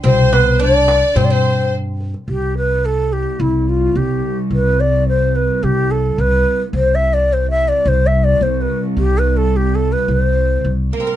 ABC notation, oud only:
X:1
M:4/4
L:1/16
Q:1/4=108
K:none
V:1 name="Oud"
C2 B,2 D4 C C3 z4 | z16 | z16 | z16 |
z12 z2 _B,/2 C/2 B, |]